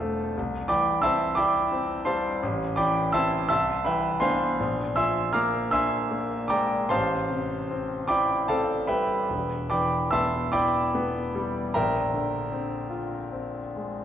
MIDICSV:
0, 0, Header, 1, 2, 480
1, 0, Start_track
1, 0, Tempo, 688863
1, 255, Time_signature, 6, 3, 24, 8
1, 1690, Tempo, 722892
1, 3130, Tempo, 774194
1, 4570, Tempo, 796813
1, 6010, Tempo, 819672
1, 6970, Tempo, 794702
1, 8410, Tempo, 857143
1, 8811, End_track
2, 0, Start_track
2, 0, Title_t, "Grand piano"
2, 0, Program_c, 0, 0
2, 0, Control_c, 0, 64, 127
2, 0, Note_on_c, 0, 28, 61
2, 0, Note_on_c, 0, 40, 60
2, 0, Note_on_c, 0, 55, 49
2, 0, Note_on_c, 0, 60, 46
2, 0, Note_on_c, 0, 65, 59
2, 0, Note_on_c, 0, 69, 66
2, 0, Note_on_c, 0, 72, 75
2, 0, Note_on_c, 0, 74, 62
2, 0, Note_on_c, 0, 77, 64
2, 0, Note_on_c, 0, 81, 75
2, 0, Note_on_c, 0, 84, 98
2, 2, Note_on_c, 0, 57, 57
2, 153, Note_off_c, 0, 60, 0
2, 221, Note_off_c, 0, 28, 0
2, 224, Note_off_c, 0, 40, 0
2, 251, Note_off_c, 0, 57, 0
2, 259, Note_on_c, 0, 36, 68
2, 268, Control_c, 0, 64, 0
2, 270, Note_off_c, 0, 72, 0
2, 271, Note_off_c, 0, 84, 0
2, 272, Note_off_c, 0, 74, 0
2, 272, Note_off_c, 0, 77, 0
2, 272, Note_off_c, 0, 81, 0
2, 273, Note_off_c, 0, 55, 0
2, 273, Note_off_c, 0, 69, 0
2, 274, Note_off_c, 0, 65, 0
2, 365, Control_c, 0, 64, 127
2, 475, Note_on_c, 0, 86, 93
2, 479, Note_on_c, 0, 74, 74
2, 481, Note_on_c, 0, 83, 69
2, 482, Note_on_c, 0, 79, 72
2, 485, Note_on_c, 0, 52, 51
2, 700, Note_off_c, 0, 74, 0
2, 702, Note_off_c, 0, 83, 0
2, 703, Note_off_c, 0, 79, 0
2, 708, Note_on_c, 0, 88, 109
2, 715, Note_off_c, 0, 86, 0
2, 718, Note_on_c, 0, 76, 80
2, 718, Note_on_c, 0, 81, 84
2, 720, Note_on_c, 0, 84, 80
2, 724, Note_on_c, 0, 60, 58
2, 863, Note_off_c, 0, 52, 0
2, 941, Note_on_c, 0, 86, 104
2, 942, Note_off_c, 0, 76, 0
2, 942, Note_off_c, 0, 81, 0
2, 944, Note_off_c, 0, 84, 0
2, 952, Note_on_c, 0, 83, 73
2, 954, Note_off_c, 0, 88, 0
2, 954, Note_on_c, 0, 74, 77
2, 957, Note_on_c, 0, 79, 76
2, 962, Note_on_c, 0, 64, 57
2, 1107, Note_off_c, 0, 60, 0
2, 1197, Note_on_c, 0, 60, 54
2, 1348, Note_off_c, 0, 64, 0
2, 1413, Note_off_c, 0, 74, 0
2, 1413, Note_off_c, 0, 83, 0
2, 1415, Note_off_c, 0, 79, 0
2, 1428, Note_on_c, 0, 84, 93
2, 1430, Note_on_c, 0, 72, 64
2, 1433, Note_on_c, 0, 81, 67
2, 1435, Note_off_c, 0, 86, 0
2, 1435, Note_on_c, 0, 77, 66
2, 1441, Note_on_c, 0, 55, 61
2, 1589, Note_off_c, 0, 60, 0
2, 1664, Note_off_c, 0, 36, 0
2, 1665, Note_off_c, 0, 72, 0
2, 1666, Note_off_c, 0, 81, 0
2, 1667, Note_off_c, 0, 77, 0
2, 1681, Note_off_c, 0, 84, 0
2, 1688, Note_off_c, 0, 55, 0
2, 1692, Note_on_c, 0, 33, 77
2, 1701, Control_c, 0, 64, 0
2, 1809, Control_c, 0, 64, 127
2, 1912, Note_on_c, 0, 86, 93
2, 1919, Note_on_c, 0, 74, 78
2, 1922, Note_on_c, 0, 79, 76
2, 1922, Note_on_c, 0, 83, 70
2, 1926, Note_on_c, 0, 52, 53
2, 2145, Note_off_c, 0, 74, 0
2, 2147, Note_off_c, 0, 79, 0
2, 2147, Note_off_c, 0, 83, 0
2, 2154, Note_on_c, 0, 88, 106
2, 2159, Note_off_c, 0, 86, 0
2, 2163, Note_on_c, 0, 76, 84
2, 2164, Note_on_c, 0, 81, 91
2, 2164, Note_on_c, 0, 84, 82
2, 2166, Note_on_c, 0, 60, 57
2, 2173, Note_on_c, 0, 64, 60
2, 2311, Note_off_c, 0, 52, 0
2, 2384, Note_off_c, 0, 60, 0
2, 2384, Note_off_c, 0, 88, 0
2, 2387, Note_off_c, 0, 33, 0
2, 2388, Note_off_c, 0, 64, 0
2, 2389, Note_off_c, 0, 76, 0
2, 2389, Note_off_c, 0, 81, 0
2, 2390, Note_off_c, 0, 84, 0
2, 2394, Note_on_c, 0, 88, 110
2, 2399, Note_on_c, 0, 81, 86
2, 2401, Note_on_c, 0, 84, 80
2, 2402, Note_on_c, 0, 76, 84
2, 2407, Note_on_c, 0, 36, 73
2, 2417, Control_c, 0, 64, 0
2, 2513, Control_c, 0, 64, 127
2, 2624, Note_off_c, 0, 81, 0
2, 2625, Note_off_c, 0, 84, 0
2, 2626, Note_off_c, 0, 76, 0
2, 2634, Note_on_c, 0, 83, 96
2, 2639, Note_off_c, 0, 88, 0
2, 2641, Note_on_c, 0, 76, 77
2, 2643, Note_on_c, 0, 79, 69
2, 2646, Note_on_c, 0, 71, 69
2, 2648, Note_on_c, 0, 52, 49
2, 2863, Note_off_c, 0, 76, 0
2, 2864, Note_off_c, 0, 79, 0
2, 2866, Note_off_c, 0, 71, 0
2, 2868, Note_on_c, 0, 84, 106
2, 2874, Note_on_c, 0, 80, 78
2, 2877, Note_off_c, 0, 83, 0
2, 2877, Note_on_c, 0, 72, 77
2, 2879, Note_on_c, 0, 59, 54
2, 2880, Note_on_c, 0, 77, 78
2, 2884, Note_on_c, 0, 62, 58
2, 3030, Note_off_c, 0, 52, 0
2, 3102, Note_off_c, 0, 59, 0
2, 3106, Note_off_c, 0, 62, 0
2, 3107, Note_off_c, 0, 36, 0
2, 3135, Note_on_c, 0, 34, 70
2, 3141, Control_c, 0, 64, 0
2, 3242, Control_c, 0, 64, 127
2, 3338, Note_off_c, 0, 80, 0
2, 3340, Note_off_c, 0, 72, 0
2, 3341, Note_off_c, 0, 77, 0
2, 3350, Note_off_c, 0, 84, 0
2, 3355, Note_on_c, 0, 88, 102
2, 3360, Note_on_c, 0, 76, 83
2, 3360, Note_on_c, 0, 84, 81
2, 3361, Note_on_c, 0, 80, 73
2, 3364, Note_on_c, 0, 53, 57
2, 3584, Note_on_c, 0, 89, 102
2, 3585, Note_off_c, 0, 76, 0
2, 3585, Note_off_c, 0, 84, 0
2, 3586, Note_off_c, 0, 80, 0
2, 3589, Note_on_c, 0, 82, 72
2, 3591, Note_on_c, 0, 86, 72
2, 3593, Note_on_c, 0, 77, 76
2, 3596, Note_on_c, 0, 58, 62
2, 3600, Note_off_c, 0, 88, 0
2, 3748, Note_off_c, 0, 53, 0
2, 3819, Note_off_c, 0, 82, 0
2, 3820, Note_off_c, 0, 86, 0
2, 3821, Note_off_c, 0, 77, 0
2, 3823, Note_on_c, 0, 88, 108
2, 3831, Note_on_c, 0, 76, 82
2, 3831, Note_on_c, 0, 80, 79
2, 3834, Note_off_c, 0, 89, 0
2, 3834, Note_on_c, 0, 84, 84
2, 3837, Note_on_c, 0, 62, 59
2, 3984, Note_off_c, 0, 58, 0
2, 4071, Note_on_c, 0, 58, 51
2, 4226, Note_off_c, 0, 62, 0
2, 4295, Note_off_c, 0, 76, 0
2, 4295, Note_off_c, 0, 80, 0
2, 4297, Note_off_c, 0, 84, 0
2, 4299, Note_on_c, 0, 86, 92
2, 4310, Note_on_c, 0, 79, 75
2, 4310, Note_on_c, 0, 82, 73
2, 4314, Note_on_c, 0, 74, 74
2, 4316, Note_off_c, 0, 88, 0
2, 4316, Note_on_c, 0, 56, 57
2, 4466, Note_off_c, 0, 58, 0
2, 4544, Note_off_c, 0, 79, 0
2, 4544, Note_off_c, 0, 82, 0
2, 4546, Note_off_c, 0, 74, 0
2, 4548, Note_off_c, 0, 34, 0
2, 4554, Note_on_c, 0, 84, 101
2, 4556, Note_off_c, 0, 86, 0
2, 4559, Note_on_c, 0, 81, 78
2, 4560, Note_on_c, 0, 72, 79
2, 4564, Note_on_c, 0, 77, 81
2, 4565, Note_off_c, 0, 56, 0
2, 4565, Note_on_c, 0, 33, 71
2, 4582, Control_c, 0, 64, 0
2, 4695, Control_c, 0, 64, 127
2, 4803, Note_on_c, 0, 48, 53
2, 5046, Note_on_c, 0, 60, 58
2, 5194, Note_off_c, 0, 48, 0
2, 5264, Note_off_c, 0, 72, 0
2, 5264, Note_off_c, 0, 81, 0
2, 5266, Note_off_c, 0, 77, 0
2, 5268, Note_on_c, 0, 86, 96
2, 5273, Note_on_c, 0, 74, 74
2, 5273, Note_on_c, 0, 79, 75
2, 5275, Note_on_c, 0, 83, 78
2, 5283, Note_on_c, 0, 64, 54
2, 5285, Note_off_c, 0, 84, 0
2, 5434, Note_off_c, 0, 60, 0
2, 5505, Note_off_c, 0, 74, 0
2, 5505, Note_off_c, 0, 79, 0
2, 5506, Note_off_c, 0, 83, 0
2, 5512, Note_on_c, 0, 81, 85
2, 5517, Note_on_c, 0, 74, 68
2, 5517, Note_on_c, 0, 77, 66
2, 5520, Note_off_c, 0, 86, 0
2, 5521, Note_on_c, 0, 69, 60
2, 5525, Note_on_c, 0, 60, 51
2, 5670, Note_off_c, 0, 64, 0
2, 5744, Note_off_c, 0, 74, 0
2, 5744, Note_off_c, 0, 77, 0
2, 5747, Note_off_c, 0, 69, 0
2, 5749, Note_on_c, 0, 83, 90
2, 5752, Note_on_c, 0, 76, 66
2, 5755, Note_on_c, 0, 79, 70
2, 5756, Note_on_c, 0, 71, 72
2, 5759, Note_off_c, 0, 81, 0
2, 5759, Note_on_c, 0, 55, 51
2, 5909, Note_off_c, 0, 60, 0
2, 5983, Note_off_c, 0, 33, 0
2, 6002, Note_on_c, 0, 28, 64
2, 6004, Note_off_c, 0, 55, 0
2, 6019, Control_c, 0, 64, 0
2, 6105, Control_c, 0, 64, 127
2, 6218, Note_off_c, 0, 76, 0
2, 6220, Note_off_c, 0, 71, 0
2, 6220, Note_off_c, 0, 79, 0
2, 6232, Note_off_c, 0, 83, 0
2, 6238, Note_on_c, 0, 86, 83
2, 6241, Note_on_c, 0, 83, 68
2, 6242, Note_on_c, 0, 74, 65
2, 6244, Note_on_c, 0, 79, 64
2, 6249, Note_on_c, 0, 52, 47
2, 6472, Note_off_c, 0, 74, 0
2, 6472, Note_off_c, 0, 83, 0
2, 6473, Note_off_c, 0, 79, 0
2, 6478, Note_on_c, 0, 88, 99
2, 6486, Note_on_c, 0, 76, 73
2, 6488, Note_off_c, 0, 86, 0
2, 6488, Note_on_c, 0, 84, 79
2, 6490, Note_on_c, 0, 81, 83
2, 6491, Note_on_c, 0, 59, 53
2, 6637, Note_off_c, 0, 52, 0
2, 6712, Note_off_c, 0, 76, 0
2, 6713, Note_off_c, 0, 84, 0
2, 6714, Note_off_c, 0, 81, 0
2, 6719, Note_on_c, 0, 86, 102
2, 6724, Note_on_c, 0, 74, 84
2, 6725, Note_off_c, 0, 88, 0
2, 6725, Note_on_c, 0, 79, 80
2, 6725, Note_on_c, 0, 83, 81
2, 6729, Note_on_c, 0, 64, 63
2, 6873, Note_off_c, 0, 59, 0
2, 6971, Note_on_c, 0, 59, 65
2, 7114, Note_off_c, 0, 64, 0
2, 7215, Note_on_c, 0, 55, 63
2, 7360, Note_off_c, 0, 59, 0
2, 7426, Note_off_c, 0, 74, 0
2, 7427, Note_off_c, 0, 79, 0
2, 7427, Note_off_c, 0, 83, 0
2, 7428, Note_off_c, 0, 28, 0
2, 7448, Note_off_c, 0, 86, 0
2, 7450, Note_on_c, 0, 82, 88
2, 7454, Note_on_c, 0, 79, 68
2, 7455, Note_on_c, 0, 76, 73
2, 7456, Note_off_c, 0, 55, 0
2, 7457, Note_on_c, 0, 70, 71
2, 7461, Note_on_c, 0, 34, 67
2, 7467, Control_c, 0, 64, 0
2, 7559, Control_c, 0, 64, 127
2, 7689, Note_on_c, 0, 50, 42
2, 7921, Note_on_c, 0, 60, 46
2, 8061, Note_off_c, 0, 50, 0
2, 8133, Note_off_c, 0, 79, 0
2, 8134, Note_off_c, 0, 76, 0
2, 8135, Note_off_c, 0, 70, 0
2, 8149, Note_on_c, 0, 65, 47
2, 8156, Note_off_c, 0, 82, 0
2, 8308, Note_off_c, 0, 60, 0
2, 8404, Note_on_c, 0, 60, 42
2, 8551, Note_off_c, 0, 65, 0
2, 8651, Note_on_c, 0, 56, 42
2, 8792, Note_off_c, 0, 60, 0
2, 8811, Note_off_c, 0, 34, 0
2, 8811, Note_off_c, 0, 56, 0
2, 8811, End_track
0, 0, End_of_file